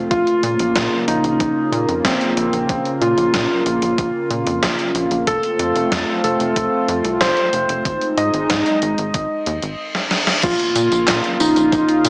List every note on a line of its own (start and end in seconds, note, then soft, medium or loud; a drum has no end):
0.00 5.23 F4 medium
0.11 0.25 A#1 medium
0.11 5.23 C#3 medium
0.11 5.23 A#3 medium
0.11 0.95 F4 medium
0.11 kick loud
0.11 closed hi-hat medium
0.27 closed hi-hat soft
0.43 0.57 A#2 medium
0.43 closed hi-hat medium
0.59 0.73 A#1 medium
0.59 closed hi-hat soft
0.76 0.89 A#2 loud
0.76 kick loud
0.76 snare loud
0.76 closed hi-hat medium
1.08 1.21 A#1 medium
1.08 1.92 D#4 medium
1.08 closed hi-hat medium
1.24 1.37 A#1 medium
1.24 closed hi-hat soft
1.40 1.54 A#1 loud
1.40 kick loud
1.40 closed hi-hat medium
1.72 1.86 A#2 loud
1.72 closed hi-hat medium
1.88 2.02 F2 medium
1.88 closed hi-hat soft
2.05 2.18 A#1 loud
2.05 2.89 C4 medium
2.05 kick loud
2.05 snare loud
2.05 closed hi-hat medium
2.21 closed hi-hat soft
2.37 2.50 A#1 loud
2.37 closed hi-hat medium
2.53 2.66 A#1 medium
2.53 closed hi-hat soft
2.69 2.83 A#1 loud
2.69 kick loud
2.69 closed hi-hat medium
2.85 closed hi-hat soft
3.01 3.15 A#2 medium
3.01 5.14 F4 medium
3.01 closed hi-hat medium
3.17 3.31 A#1 medium
3.17 closed hi-hat soft
3.34 3.47 A#2 loud
3.34 kick loud
3.34 snare loud
3.34 closed hi-hat medium
3.66 3.79 A#1 medium
3.66 closed hi-hat medium
3.82 3.95 A#1 medium
3.82 closed hi-hat soft
3.98 4.12 A#1 loud
3.98 kick loud
3.98 closed hi-hat medium
4.30 4.44 A#2 medium
4.30 closed hi-hat medium
4.47 4.60 F2 medium
4.47 closed hi-hat soft
4.63 4.76 A#1 loud
4.63 kick loud
4.63 snare loud
4.63 closed hi-hat medium
4.79 closed hi-hat soft
4.95 5.08 A#1 loud
4.95 closed hi-hat medium
5.11 5.24 A#1 medium
5.11 closed hi-hat soft
5.27 5.41 F1 medium
5.27 7.83 A3 medium
5.27 9.75 C4 medium
5.27 7.83 F4 medium
5.27 6.11 A4 loud
5.27 kick loud
5.27 closed hi-hat medium
5.43 closed hi-hat soft
5.59 5.73 F2 medium
5.59 closed hi-hat medium
5.75 5.89 F1 medium
5.75 closed hi-hat soft
5.92 6.05 F2 loud
5.92 kick loud
5.92 snare loud
5.92 closed hi-hat medium
6.24 6.37 F1 medium
6.24 7.08 A4 medium
6.24 closed hi-hat medium
6.40 6.54 F1 medium
6.40 closed hi-hat medium
6.56 6.70 F1 loud
6.56 kick loud
6.56 closed hi-hat medium
6.88 7.02 F2 loud
6.88 closed hi-hat medium
7.05 7.18 C2 medium
7.05 closed hi-hat soft
7.21 7.34 F1 loud
7.21 8.05 C5 medium
7.21 kick loud
7.21 snare loud
7.21 closed hi-hat medium
7.37 closed hi-hat soft
7.53 7.67 F1 loud
7.53 closed hi-hat medium
7.69 7.83 F1 medium
7.69 closed hi-hat medium
7.85 7.99 G#1 loud
7.85 9.77 G#3 medium
7.85 9.77 D#4 medium
7.85 kick loud
7.85 closed hi-hat medium
8.01 closed hi-hat soft
8.17 8.31 G#2 medium
8.17 9.79 D#5 medium
8.17 closed hi-hat medium
8.34 8.47 G#1 medium
8.34 closed hi-hat medium
8.50 8.63 G#2 loud
8.50 kick loud
8.50 snare loud
8.50 closed hi-hat medium
8.66 closed hi-hat soft
8.82 8.96 G#1 loud
8.82 closed hi-hat medium
8.98 9.12 G#1 medium
8.98 closed hi-hat medium
9.14 9.28 G#1 loud
9.14 kick loud
9.14 closed hi-hat medium
9.14 reverse cymbal medium
9.46 9.60 D#2 loud
9.46 closed hi-hat medium
9.63 9.76 G#1 medium
9.63 closed hi-hat medium
9.95 snare medium
10.11 snare medium
10.27 snare medium
10.43 10.57 A#1 loud
10.43 12.09 C#3 medium
10.43 12.09 A#3 medium
10.43 11.27 F4 loud
10.43 12.09 F4 loud
10.43 kick loud
10.43 closed hi-hat medium
10.43 tambourine soft
10.43 crash loud
10.43 impact medium
10.59 closed hi-hat soft
10.76 10.89 A#2 loud
10.76 closed hi-hat loud
10.76 tambourine medium
10.92 11.05 A#1 medium
10.92 closed hi-hat soft
10.92 tambourine soft
11.08 11.21 A#2 loud
11.08 kick loud
11.08 snare loud
11.08 clap medium
11.08 closed hi-hat medium
11.08 tambourine soft
11.24 closed hi-hat soft
11.40 11.54 A#1 loud
11.40 12.09 D#4 loud
11.40 12.09 D#4 medium
11.40 open hi-hat medium
11.40 tambourine medium
11.56 11.70 A#1 medium
11.56 closed hi-hat soft
11.56 tambourine soft
11.72 11.86 A#1 loud
11.72 kick loud
11.72 closed hi-hat medium
11.72 tambourine soft
11.89 closed hi-hat soft
12.05 12.09 A#2 medium
12.05 closed hi-hat loud
12.05 tambourine medium